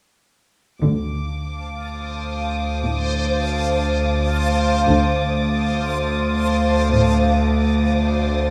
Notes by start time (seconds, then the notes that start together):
0.82 D2 D3 C5 F5 A5 D6
1.84 D#6
2.85 A2 A6
4.88 D2 D3 C5 F5 A5
6.92 A2